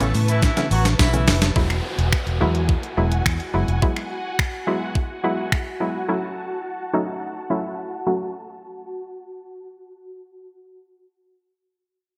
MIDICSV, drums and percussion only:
0, 0, Header, 1, 2, 480
1, 0, Start_track
1, 0, Key_signature, 3, "minor"
1, 0, Tempo, 566038
1, 1322, Time_signature, 4, 2, 24, 8
1, 10321, End_track
2, 0, Start_track
2, 0, Title_t, "Drums"
2, 4, Note_on_c, 9, 42, 65
2, 4, Note_on_c, 9, 82, 62
2, 89, Note_off_c, 9, 42, 0
2, 89, Note_off_c, 9, 82, 0
2, 123, Note_on_c, 9, 46, 76
2, 123, Note_on_c, 9, 82, 56
2, 208, Note_off_c, 9, 46, 0
2, 208, Note_off_c, 9, 82, 0
2, 241, Note_on_c, 9, 42, 71
2, 241, Note_on_c, 9, 82, 70
2, 326, Note_off_c, 9, 42, 0
2, 326, Note_off_c, 9, 82, 0
2, 360, Note_on_c, 9, 36, 115
2, 360, Note_on_c, 9, 82, 70
2, 363, Note_on_c, 9, 38, 64
2, 445, Note_off_c, 9, 36, 0
2, 445, Note_off_c, 9, 82, 0
2, 448, Note_off_c, 9, 38, 0
2, 483, Note_on_c, 9, 38, 57
2, 483, Note_on_c, 9, 42, 60
2, 483, Note_on_c, 9, 82, 55
2, 568, Note_off_c, 9, 38, 0
2, 568, Note_off_c, 9, 42, 0
2, 568, Note_off_c, 9, 82, 0
2, 604, Note_on_c, 9, 46, 76
2, 604, Note_on_c, 9, 82, 51
2, 688, Note_off_c, 9, 46, 0
2, 688, Note_off_c, 9, 82, 0
2, 723, Note_on_c, 9, 38, 78
2, 723, Note_on_c, 9, 42, 73
2, 723, Note_on_c, 9, 82, 71
2, 808, Note_off_c, 9, 38, 0
2, 808, Note_off_c, 9, 42, 0
2, 808, Note_off_c, 9, 82, 0
2, 842, Note_on_c, 9, 38, 97
2, 843, Note_on_c, 9, 36, 116
2, 843, Note_on_c, 9, 54, 93
2, 844, Note_on_c, 9, 82, 80
2, 927, Note_off_c, 9, 36, 0
2, 927, Note_off_c, 9, 38, 0
2, 928, Note_off_c, 9, 54, 0
2, 929, Note_off_c, 9, 82, 0
2, 962, Note_on_c, 9, 42, 55
2, 962, Note_on_c, 9, 82, 58
2, 1047, Note_off_c, 9, 42, 0
2, 1047, Note_off_c, 9, 82, 0
2, 1082, Note_on_c, 9, 38, 117
2, 1082, Note_on_c, 9, 46, 87
2, 1082, Note_on_c, 9, 82, 63
2, 1167, Note_off_c, 9, 38, 0
2, 1167, Note_off_c, 9, 46, 0
2, 1167, Note_off_c, 9, 82, 0
2, 1202, Note_on_c, 9, 38, 103
2, 1202, Note_on_c, 9, 42, 66
2, 1202, Note_on_c, 9, 82, 69
2, 1287, Note_off_c, 9, 38, 0
2, 1287, Note_off_c, 9, 42, 0
2, 1287, Note_off_c, 9, 82, 0
2, 1322, Note_on_c, 9, 36, 114
2, 1407, Note_off_c, 9, 36, 0
2, 1442, Note_on_c, 9, 26, 59
2, 1443, Note_on_c, 9, 42, 50
2, 1527, Note_off_c, 9, 26, 0
2, 1528, Note_off_c, 9, 42, 0
2, 1684, Note_on_c, 9, 42, 69
2, 1769, Note_off_c, 9, 42, 0
2, 1802, Note_on_c, 9, 26, 110
2, 1802, Note_on_c, 9, 36, 116
2, 1887, Note_off_c, 9, 26, 0
2, 1887, Note_off_c, 9, 36, 0
2, 1924, Note_on_c, 9, 42, 56
2, 2009, Note_off_c, 9, 42, 0
2, 2161, Note_on_c, 9, 42, 65
2, 2246, Note_off_c, 9, 42, 0
2, 2280, Note_on_c, 9, 36, 106
2, 2365, Note_off_c, 9, 36, 0
2, 2402, Note_on_c, 9, 42, 52
2, 2487, Note_off_c, 9, 42, 0
2, 2643, Note_on_c, 9, 42, 66
2, 2727, Note_off_c, 9, 42, 0
2, 2763, Note_on_c, 9, 26, 110
2, 2763, Note_on_c, 9, 36, 107
2, 2847, Note_off_c, 9, 36, 0
2, 2848, Note_off_c, 9, 26, 0
2, 2883, Note_on_c, 9, 42, 50
2, 2968, Note_off_c, 9, 42, 0
2, 3123, Note_on_c, 9, 42, 61
2, 3208, Note_off_c, 9, 42, 0
2, 3242, Note_on_c, 9, 36, 117
2, 3327, Note_off_c, 9, 36, 0
2, 3362, Note_on_c, 9, 26, 60
2, 3447, Note_off_c, 9, 26, 0
2, 3723, Note_on_c, 9, 26, 114
2, 3723, Note_on_c, 9, 36, 119
2, 3807, Note_off_c, 9, 36, 0
2, 3808, Note_off_c, 9, 26, 0
2, 4201, Note_on_c, 9, 36, 104
2, 4285, Note_off_c, 9, 36, 0
2, 4683, Note_on_c, 9, 26, 109
2, 4683, Note_on_c, 9, 36, 110
2, 4768, Note_off_c, 9, 26, 0
2, 4768, Note_off_c, 9, 36, 0
2, 10321, End_track
0, 0, End_of_file